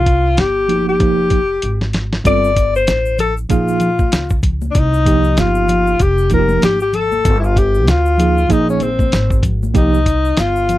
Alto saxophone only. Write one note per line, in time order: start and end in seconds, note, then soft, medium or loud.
0.00 0.41 F4 loud
0.40 0.88 G4 loud
0.89 1.91 G4 loud
2.27 2.72 D5 loud
2.76 3.17 C5 medium
3.20 3.34 A4 medium
3.51 4.40 F4 medium
4.71 4.80 D4 medium
4.79 5.41 D#4 loud
5.39 6.04 F4 loud
6.02 6.32 G4 loud
6.34 6.62 A#4 medium
6.65 6.80 G4 medium
6.82 6.97 G4 medium
6.95 7.39 A4 loud
7.40 7.46 E4 medium
7.45 7.60 F4 medium
7.58 7.91 G4 medium
7.90 8.53 F4 medium
8.52 8.69 D#4 medium
8.70 8.84 C#4 medium
8.83 9.44 C4 medium
9.77 10.41 D#4 medium
10.39 10.78 F4 medium